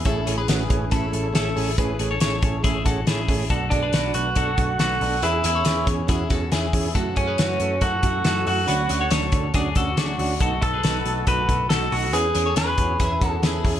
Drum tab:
HH |xxxxxxxo|xxxxxxxo|xxxxxxxo|xxxxxxxo|
SD |--o---o-|--o---o-|--o---o-|--o---o-|
BD |o--oo---|o--ooo-o|oo--oo--|---ooo-o|

HH |xxxxxxxo|xxxxxxxo|xxxxxxxo|xxxxxxxo|
SD |--o---o-|--o---o-|--o---o-|--o---o-|
BD |oo--oo--|---ooo--|oo--oo--|---ooo-o|